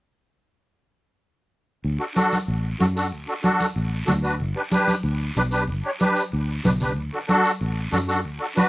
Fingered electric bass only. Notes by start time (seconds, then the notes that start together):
1.84 D2
2.48 A1
2.80 F#2
3.12 D2
3.76 A1
4.09 D2
4.40 G1
5.04 D2
5.36 B1
5.68 G1
6.33 D2
6.65 B1
6.96 D2
7.61 A1
7.92 F#2
8.25 D2